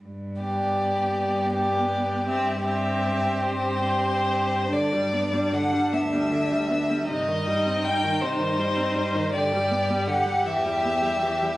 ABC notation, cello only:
X:1
M:6/8
L:1/8
Q:3/8=52
K:G
V:1 name="Cello" clef=bass
G,,3 G,,3 | G,,3 G,,3 | G,,3 D,,3 | G,,3 G,,3 |
G,,3 E,,3 |]